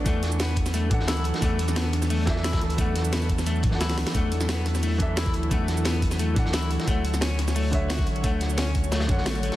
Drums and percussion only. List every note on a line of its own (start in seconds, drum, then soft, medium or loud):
0.06 kick loud
0.06 closed hi-hat medium
0.06 shaker medium
0.23 snare soft
0.23 closed hi-hat medium
0.23 shaker soft
0.32 shaker medium
0.40 snare loud
0.40 closed hi-hat medium
0.40 closed hi-hat loud
0.40 shaker medium
0.49 closed hi-hat soft
0.56 kick medium
0.56 closed hi-hat medium
0.66 snare soft
0.66 shaker medium
0.74 closed hi-hat medium
0.74 shaker medium
0.91 kick loud
0.91 closed hi-hat medium
1.00 snare soft
1.08 snare loud
1.08 closed hi-hat medium
1.08 shaker medium
1.17 closed hi-hat soft
1.24 closed hi-hat medium
1.24 open hi-hat medium
1.34 snare medium
1.34 closed hi-hat soft
1.42 kick loud
1.42 closed hi-hat medium
1.42 shaker medium
1.59 closed hi-hat medium
1.59 shaker soft
1.68 snare medium
1.68 shaker medium
1.76 snare loud
1.76 closed hi-hat loud
1.76 closed hi-hat medium
1.76 shaker medium
1.93 snare soft
1.93 closed hi-hat medium
2.02 snare soft
2.02 shaker medium
2.10 closed hi-hat loud
2.10 open hi-hat medium
2.10 shaker medium
2.27 kick medium
2.27 snare loud
2.27 closed hi-hat medium
2.36 snare soft
2.44 snare loud
2.44 closed hi-hat loud
2.44 closed hi-hat medium
2.44 shaker medium
2.53 kick loud
2.53 snare loud
2.53 closed hi-hat soft
2.53 closed hi-hat medium
2.61 open hi-hat medium
2.70 closed hi-hat medium
2.70 closed hi-hat soft
2.78 kick loud
2.78 closed hi-hat medium
2.78 closed hi-hat loud
2.78 shaker medium
2.96 snare soft
2.96 closed hi-hat medium
2.96 shaker soft
3.05 closed hi-hat soft
3.05 shaker medium
3.13 snare loud
3.13 closed hi-hat loud
3.13 closed hi-hat medium
3.13 shaker medium
3.21 closed hi-hat soft
3.21 shaker soft
3.29 kick medium
3.29 closed hi-hat medium
3.38 snare soft
3.38 shaker medium
3.46 closed hi-hat medium
3.46 closed hi-hat loud
3.46 shaker medium
3.56 shaker soft
3.63 kick loud
3.63 closed hi-hat medium
3.71 snare soft
3.81 snare medium
3.81 snare loud
3.81 closed hi-hat loud
3.81 closed hi-hat medium
3.81 shaker medium
3.90 snare medium
3.90 closed hi-hat soft
3.90 shaker soft
3.98 snare medium
3.98 closed hi-hat medium
3.98 open hi-hat medium
4.07 snare medium
4.07 closed hi-hat soft
4.15 kick loud
4.15 closed hi-hat loud
4.15 shaker medium
4.32 closed hi-hat medium
4.32 shaker soft
4.41 snare medium
4.41 shaker medium
4.49 snare loud
4.49 closed hi-hat loud
4.49 shaker soft
4.66 snare soft
4.66 closed hi-hat medium
4.75 snare soft
4.75 shaker medium
4.83 closed hi-hat loud
4.83 open hi-hat medium
4.83 shaker soft
4.99 kick medium
4.99 closed hi-hat medium
5.17 snare loud
5.17 closed hi-hat loud
5.17 closed hi-hat medium
5.17 shaker medium
5.26 kick loud
5.26 snare soft
5.26 closed hi-hat soft
5.33 closed hi-hat medium
5.33 open hi-hat medium
5.43 closed hi-hat soft
5.51 kick loud
5.51 closed hi-hat medium
5.51 shaker soft
5.68 snare soft
5.68 closed hi-hat medium
5.68 shaker soft
5.77 shaker medium
5.85 snare loud
5.85 closed hi-hat medium
5.85 closed hi-hat loud
5.85 shaker soft
5.93 closed hi-hat soft
6.02 kick medium
6.02 closed hi-hat medium
6.11 snare soft
6.11 shaker medium
6.19 closed hi-hat medium
6.19 closed hi-hat loud
6.19 shaker soft
6.36 kick loud
6.36 closed hi-hat medium
6.46 snare medium
6.53 snare loud
6.53 closed hi-hat medium
6.53 shaker soft
6.63 closed hi-hat soft
6.71 closed hi-hat medium
6.71 open hi-hat medium
6.80 snare medium
6.80 closed hi-hat soft
6.88 kick loud
6.88 closed hi-hat medium
6.88 closed hi-hat loud
6.88 shaker soft
7.05 closed hi-hat medium
7.05 shaker soft
7.14 snare medium
7.14 shaker medium
7.21 snare loud
7.21 closed hi-hat medium
7.21 shaker soft
7.39 snare soft
7.39 closed hi-hat medium
7.48 snare soft
7.48 shaker medium
7.56 closed hi-hat medium
7.56 open hi-hat medium
7.56 shaker soft
7.73 kick medium
7.73 closed hi-hat medium
7.90 snare loud
7.90 closed hi-hat medium
7.90 shaker soft
7.99 kick loud
7.99 snare medium
7.99 closed hi-hat soft
8.07 closed hi-hat medium
8.07 open hi-hat medium
8.16 closed hi-hat soft
8.24 kick loud
8.24 closed hi-hat medium
8.24 shaker soft
8.41 snare soft
8.41 closed hi-hat medium
8.41 shaker soft
8.50 shaker medium
8.58 snare loud
8.58 closed hi-hat medium
8.58 closed hi-hat loud
8.58 shaker soft
8.67 closed hi-hat soft
8.75 kick medium
8.75 closed hi-hat medium
8.84 shaker medium
8.92 snare loud
8.92 closed hi-hat medium
8.92 shaker soft
9.00 snare loud
9.00 closed hi-hat medium
9.09 kick loud
9.09 closed hi-hat medium
9.18 snare soft
9.26 snare loud
9.26 closed hi-hat medium
9.26 shaker soft
9.35 closed hi-hat soft
9.35 shaker soft
9.43 closed hi-hat medium
9.43 open hi-hat medium
9.52 snare medium
9.52 closed hi-hat soft